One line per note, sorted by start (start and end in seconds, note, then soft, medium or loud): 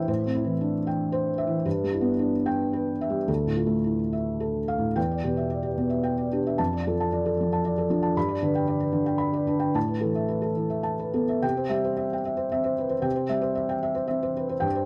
0.00 0.08 A2 medium
0.00 0.19 E3 soft
0.00 0.10 C4 soft
0.00 0.11 D4 soft
0.00 0.10 E4 medium
0.00 0.08 C5 medium
0.00 0.24 E5 medium
0.00 0.10 G5 medium
0.08 1.61 A2 medium
0.08 0.50 C5 medium
0.26 0.54 C4 soft
0.35 0.77 E4 medium
0.44 0.72 E3 soft
0.61 0.87 D4 soft
0.87 1.29 G5 soft
1.12 1.55 C5 medium
1.38 1.65 E5 medium
1.47 1.65 E3 soft
1.65 3.24 G2 medium
1.65 2.09 B4 soft
1.84 2.12 G3 soft
1.92 2.35 E4 soft
2.01 2.30 B3 soft
2.19 2.46 D4 soft
2.46 2.89 G5 medium
2.73 3.17 B4 soft
3.01 3.29 E5 soft
3.10 3.28 G3 soft
3.27 4.92 D2 soft
3.27 3.73 A4 soft
3.47 3.77 A2 soft
3.56 4.01 F4 soft
3.67 3.96 A3 soft
3.84 4.12 E4 soft
4.13 4.57 E5 soft
4.40 4.86 A4 soft
4.68 4.96 F5 medium
4.78 4.97 A2 soft
4.96 6.55 E2 soft
4.96 5.18 G5 medium
5.11 5.33 D5 soft
5.23 5.68 B2 soft
5.23 5.46 G4 soft
5.37 5.59 E5 soft
5.50 5.73 D5 soft
5.63 5.86 G4 soft
5.78 6.00 B2 soft
5.90 6.12 E5 soft
6.03 6.26 G5 soft
6.18 6.40 D5 soft
6.32 6.59 D4 soft
6.32 6.54 G4 soft
6.47 6.59 E5 soft
6.58 8.12 F2 soft
6.58 6.80 A5 medium
6.73 6.94 D5 soft
6.87 7.29 F3 soft
6.87 7.07 A4 soft
7.00 7.21 A5 soft
7.12 7.33 D5 soft
7.25 7.46 A4 soft
7.41 7.60 F3 soft
7.53 7.73 A5 soft
7.65 7.85 D5 medium
7.78 7.98 A4 soft
7.90 8.11 F3 medium
7.90 8.16 D4 soft
8.03 8.16 A5 soft
8.17 9.72 G2 medium
8.17 8.38 B5 medium
8.28 8.50 D5 soft
8.42 8.84 D3 soft
8.42 8.63 B4 soft
8.55 8.76 G5 soft
8.67 8.88 D5 medium
8.80 9.02 B4 soft
8.93 9.15 D3 soft
9.06 9.28 G5 soft
9.18 9.41 B5 medium
9.33 9.56 D5 soft
9.47 9.75 D4 soft
9.47 9.70 B4 soft
9.59 9.75 G5 soft
9.75 11.39 A2 medium
9.75 9.98 A5 medium
9.88 10.11 B4 soft
10.01 10.47 E3 soft
10.01 10.24 A4 soft
10.15 10.38 E5 soft
10.28 10.52 B4 soft
10.42 10.65 A4 soft
10.56 10.80 E3 soft
10.70 10.94 E5 soft
10.83 11.08 A5 soft
10.99 11.23 B4 soft
11.14 11.42 B3 soft
11.14 11.37 A4 soft
11.29 11.43 E5 soft
11.42 13.00 C3 medium
11.42 11.65 G5 medium
11.57 11.79 C5 soft
11.69 12.13 G3 soft
11.69 11.92 E5 medium
11.84 12.06 C5 soft
11.97 12.19 E5 soft
12.13 12.34 G5 soft
12.25 12.46 E5 soft
12.37 12.59 C5 soft
12.52 12.94 C4 soft
12.52 12.73 E5 medium
12.64 12.86 C5 soft
12.78 12.92 B4 soft
12.89 13.12 C5 soft
13.02 14.59 C3 soft
13.02 13.25 G5 soft
13.16 13.39 C5 soft
13.29 13.74 G3 soft
13.29 13.52 E5 medium
13.41 13.65 C5 soft
13.55 13.78 E5 medium
13.69 13.92 G5 soft
13.83 14.05 E5 soft
13.95 14.18 C5 soft
14.07 14.52 C4 soft
14.07 14.31 E5 medium
14.23 14.45 C5 soft
14.37 14.51 B4 soft
14.49 14.64 C5 medium
14.60 14.85 G2 medium
14.60 14.84 G5 medium
14.75 14.85 C5 soft